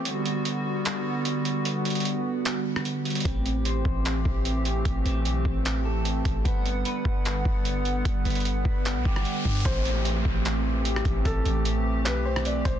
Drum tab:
HH |x---x---x-------x-------x---x---|x---xxxxx-------x-------x---xxxx|x---x---x-------x-------x---x---|x---x---x-------x-------x---x---|
CP |----------------x---------------|----------------x---------------|----------------x---------------|----------------x---------------|
SD |--------------------------------|----------------------r---------|--------------------------------|--------------------------------|
BD |--------------------------------|--------------------------------|o-----------o-------o-----------|o-----------o---------------o---|

HH |x---x---x-------x-------x---x---|x---xxxxx-------x-------x---xxxx|x---x---x-------x-------x---x---|x---x---x-------x-------x---x---|
CP |----------------x---------------|----------------x---------------|----------------x---------------|----------------x---------------|
SD |--------------------------------|----------------------r---------|--------------------------r-----|----------------------r---------|
BD |o-----------o-------o-----------|o-----------o-------o-------o---|o-----------o---------------o---|o---------------------------o---|